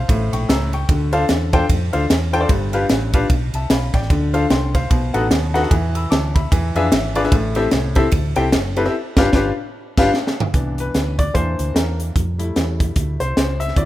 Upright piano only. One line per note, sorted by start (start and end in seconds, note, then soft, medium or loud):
0.00 0.31 C5 medium
0.00 0.30 F5 medium
0.08 0.69 A2 medium
0.33 0.49 G5 medium
0.33 0.48 C#6 medium
0.49 0.72 A#5 medium
0.49 0.72 E6 medium
0.74 1.12 G5 medium
0.74 1.11 C#6 medium
0.90 1.50 D3 medium
1.13 1.24 D4 medium
1.13 1.24 F4 medium
1.13 1.24 A4 medium
1.13 1.24 C5 medium
1.13 1.24 F5 loud
1.53 1.64 D4 medium
1.53 1.64 F4 medium
1.53 1.64 A4 medium
1.53 1.64 C5 loud
1.53 1.64 G5 loud
1.93 2.04 D4 medium
1.93 2.04 F4 medium
1.93 2.04 A4 medium
1.93 2.04 C5 medium
1.93 2.04 F5 loud
2.33 2.39 D4 medium
2.33 2.39 F4 medium
2.33 2.39 A4 medium
2.33 2.39 C5 medium
2.33 2.39 G5 loud
2.41 2.49 D4 medium
2.41 2.49 F4 medium
2.41 2.49 A4 medium
2.41 2.49 C5 medium
2.41 2.49 D5 medium
2.49 3.09 G2 medium
2.73 2.84 D4 medium
2.73 2.84 F4 medium
2.73 2.84 G4 medium
2.73 2.84 B4 medium
2.73 2.84 F5 medium
3.14 3.25 D4 loud
3.14 3.25 F4 medium
3.14 3.25 G4 medium
3.14 3.25 B4 medium
3.14 3.25 F5 loud
3.55 3.70 E5 medium
3.55 3.70 A5 medium
3.70 3.93 F5 medium
3.70 3.93 B5 medium
3.94 4.33 D5 medium
3.94 4.32 G5 medium
4.10 4.70 D3 medium
4.34 4.45 D4 medium
4.34 4.45 F4 medium
4.34 4.45 A4 medium
4.34 4.45 C5 medium
4.34 4.45 F5 loud
4.51 4.74 G5 medium
4.51 4.73 C6 medium
4.74 5.13 C5 medium
4.74 5.13 F5 medium
4.90 5.50 B2 medium
5.14 5.25 D#4 medium
5.14 5.25 F#4 medium
5.14 5.25 A4 medium
5.14 5.25 B4 medium
5.14 5.25 F#5 medium
5.54 5.60 D#4 medium
5.54 5.60 F#4 medium
5.54 5.60 A4 medium
5.54 5.60 B4 medium
5.54 5.60 F#5 loud
5.63 5.71 D#4 medium
5.63 5.71 F#4 medium
5.63 5.71 A4 medium
5.63 5.71 B4 medium
5.63 5.71 F#5 medium
5.70 6.31 E3 medium
5.95 6.11 B5 medium
5.95 6.11 E6 medium
6.10 6.34 A5 medium
6.10 6.33 D6 medium
6.34 6.74 E5 medium
6.34 6.73 B5 medium
6.52 7.12 E3 medium
6.75 6.86 D4 loud
6.75 6.86 F4 medium
6.75 6.86 G#4 medium
6.75 6.86 B4 medium
6.75 6.87 E5 loud
6.75 6.91 G#5 medium
6.92 7.23 E5 medium
7.16 7.21 D4 loud
7.16 7.21 F4 medium
7.16 7.21 G#4 medium
7.16 7.21 B4 medium
7.16 7.21 D5 loud
7.24 7.32 D4 medium
7.24 7.32 F4 medium
7.24 7.32 G#4 medium
7.24 7.32 B4 medium
7.24 7.32 E5 medium
7.32 7.92 A2 medium
7.56 7.67 C4 medium
7.56 7.67 E4 medium
7.56 7.67 G4 medium
7.56 7.67 A4 medium
7.56 7.67 E5 loud
7.96 8.07 C4 medium
7.96 8.07 E4 medium
7.96 8.07 G4 medium
7.96 8.07 A4 medium
7.96 8.07 E5 loud
8.36 8.47 C4 medium
8.36 8.47 E4 medium
8.36 8.47 G4 medium
8.36 8.47 A4 medium
8.36 8.47 G5 loud
8.77 8.82 C4 medium
8.77 8.82 E4 medium
8.77 8.82 G4 medium
8.77 8.82 A4 medium
8.77 8.82 B4 loud
8.86 8.93 C4 medium
8.86 8.93 E4 medium
8.86 8.93 G4 medium
8.86 8.93 A4 medium
8.86 8.93 E5 medium
9.18 9.28 D4 loud
9.18 9.28 F4 loud
9.18 9.29 G4 loud
9.18 9.29 B4 loud
9.18 9.29 F5 loud
9.34 9.50 D4 loud
9.34 9.50 F4 loud
9.34 9.50 G4 medium
9.34 9.50 B4 medium
9.34 9.50 F5 medium
9.98 10.09 D4 loud
9.98 10.09 F4 loud
9.98 10.09 G4 loud
9.98 10.09 B4 loud
9.98 10.09 F5 loud
10.54 11.15 E3 medium
10.54 11.15 B3 soft
10.54 11.16 D4 medium
10.80 11.21 B4 medium
11.19 11.35 D5 loud
11.34 12.11 E3 medium
11.34 12.11 A#3 medium
11.34 12.12 D4 medium
11.34 11.72 C5 loud
11.74 11.97 A#4 medium
12.38 13.72 G3 medium
12.38 13.73 A3 soft
12.38 13.73 E4 medium
13.20 13.62 C5 medium
13.60 13.77 E5 loud
13.76 13.85 F#3 medium
13.76 13.85 C4 soft
13.76 13.85 E4 medium
13.76 13.85 D5 medium